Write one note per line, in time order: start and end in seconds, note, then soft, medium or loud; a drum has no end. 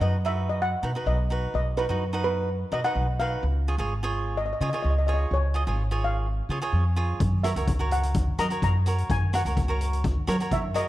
0.00 0.73 F#2 medium
0.00 0.15 D#4 medium
0.00 0.15 F#4 medium
0.00 0.15 B4 medium
0.00 0.23 D#5 medium
0.25 0.59 D#4 medium
0.25 0.60 F#4 medium
0.25 0.60 B4 medium
0.25 0.47 E5 medium
0.49 0.59 D#5 medium
0.62 1.09 F#5 loud
0.83 0.93 B2 medium
0.83 0.90 D#4 medium
0.83 0.90 F#4 medium
0.83 0.91 B4 medium
0.95 1.16 D#4 medium
0.95 1.16 F#4 medium
0.95 1.17 B4 medium
1.06 1.48 B1 medium
1.06 1.54 D#5 medium
1.30 1.59 D#4 medium
1.30 1.59 F#4 medium
1.30 1.59 B4 medium
1.54 1.85 B1 medium
1.54 1.76 D#5 medium
1.77 1.84 D#4 medium
1.77 1.85 F#4 medium
1.77 2.21 B4 medium
1.77 1.85 B4 medium
1.89 2.62 F#2 medium
1.89 2.03 D#4 medium
1.89 2.04 F#4 medium
1.89 2.04 B4 medium
2.13 2.48 D#4 medium
2.13 2.48 F#4 medium
2.13 2.49 B4 medium
2.24 2.68 B4 medium
2.72 2.82 B2 medium
2.72 2.79 D#4 medium
2.72 2.79 F#4 medium
2.72 2.80 B4 medium
2.72 2.85 D#5 medium
2.84 3.05 D#4 medium
2.84 3.06 F#4 medium
2.84 3.06 B4 medium
2.84 3.20 F#5 loud
2.95 3.37 B1 medium
3.20 3.43 D#4 medium
3.20 3.43 F#4 medium
3.20 3.44 B4 medium
3.20 4.34 F5 medium
3.43 3.74 C#2 medium
3.68 3.74 F4 medium
3.68 3.75 G#4 medium
3.68 3.75 C#5 medium
3.78 4.51 G#1 medium
3.78 3.92 F4 medium
3.78 3.93 G#4 medium
3.78 3.93 C#5 medium
4.03 4.38 F4 medium
4.03 4.38 G#4 medium
4.03 4.38 C#5 medium
4.37 4.44 D#5 medium
4.46 4.52 D#5 medium
4.53 4.60 D#5 medium
4.61 4.71 C#3 medium
4.61 4.68 F4 medium
4.61 4.69 G#4 medium
4.61 4.69 C#5 medium
4.61 4.68 D#5 soft
4.69 4.94 F4 medium
4.69 4.74 D#5 medium
4.74 4.94 G#4 soft
4.74 4.95 C#5 medium
4.74 4.81 D#5 soft
4.83 5.26 C#2 medium
4.83 4.89 D#5 medium
4.90 4.97 D#5 soft
4.98 5.06 D#5 medium
5.07 5.37 F4 medium
5.07 5.37 G#4 medium
5.07 5.37 C#5 medium
5.07 5.13 D#5 medium
5.14 5.21 D#5 medium
5.31 5.63 C#2 medium
5.31 6.06 C#5 medium
5.54 5.62 F4 medium
5.54 5.62 G#4 medium
5.54 5.63 D#5 medium
5.67 6.40 G#1 medium
5.67 5.81 F4 medium
5.67 5.82 G#4 medium
5.67 5.82 C#5 medium
5.91 6.26 F4 medium
5.91 6.27 G#4 medium
5.91 6.27 C#5 medium
6.04 6.70 F5 medium
6.49 6.60 C#3 medium
6.49 6.57 F4 medium
6.49 6.58 G#4 medium
6.49 6.58 C#5 medium
6.62 6.83 F4 medium
6.62 6.83 G#4 medium
6.62 6.84 C#5 medium
6.73 7.15 F2 medium
6.96 7.20 F4 medium
6.96 7.21 G#4 medium
6.96 7.21 C#5 medium
7.20 7.52 F#2 medium
7.20 kick loud
7.20 closed hi-hat medium
7.44 7.52 F#4 medium
7.44 7.52 A#4 medium
7.44 7.52 C#5 medium
7.44 7.93 E5 medium
7.44 cross-stick medium
7.44 closed hi-hat medium
7.56 8.29 C#2 medium
7.56 7.70 F#4 medium
7.56 7.71 A#4 soft
7.56 7.71 C#5 medium
7.56 closed hi-hat medium
7.67 kick medium
7.67 closed hi-hat medium
7.79 8.15 F#4 medium
7.79 8.15 A#4 medium
7.79 8.16 C#5 medium
7.91 8.41 F#5 medium
7.91 closed hi-hat medium
8.03 closed hi-hat medium
8.14 kick loud
8.14 closed hi-hat medium
8.39 8.49 F#3 medium
8.39 8.46 F#4 medium
8.39 8.46 A#4 medium
8.39 8.47 D#5 medium
8.39 8.61 A#5 medium
8.39 cross-stick medium
8.39 closed hi-hat medium
8.50 8.72 F#4 medium
8.50 8.72 A#4 soft
8.50 8.73 C#5 medium
8.50 closed hi-hat medium
8.62 9.04 F#2 medium
8.62 9.12 A#5 medium
8.62 kick medium
8.62 closed hi-hat medium
8.86 9.15 F#4 medium
8.86 9.15 A#4 medium
8.86 9.15 C#5 medium
8.86 closed hi-hat medium
8.98 closed hi-hat medium
9.09 9.41 F#2 medium
9.09 9.35 G#5 medium
9.09 kick loud
9.09 closed hi-hat medium
9.33 9.41 F#4 medium
9.33 9.41 A#4 medium
9.33 9.41 C#5 medium
9.33 9.78 F#5 medium
9.33 cross-stick medium
9.33 closed hi-hat medium
9.45 10.18 C#2 medium
9.45 9.60 F#4 medium
9.45 9.60 A#4 medium
9.45 9.60 C#5 medium
9.45 closed hi-hat medium
9.57 kick medium
9.57 closed hi-hat medium
9.68 10.04 F#4 medium
9.68 10.04 A#4 medium
9.68 10.05 C#5 medium
9.81 closed hi-hat medium
9.93 closed hi-hat medium
10.04 kick loud
10.04 closed hi-hat medium
10.27 10.38 F#3 medium
10.27 10.35 F#4 medium
10.27 10.35 A#4 medium
10.27 10.36 C#5 medium
10.27 cross-stick medium
10.27 closed hi-hat medium
10.40 10.62 F#4 medium
10.40 10.62 A#4 medium
10.40 10.62 C#5 medium
10.40 closed hi-hat medium
10.51 10.88 F#2 medium
10.51 10.77 E5 medium
10.51 kick medium
10.51 closed hi-hat medium
10.74 10.88 F#4 medium
10.74 10.88 A#4 medium
10.74 10.88 C#5 medium
10.74 10.88 D#5 medium
10.74 closed hi-hat medium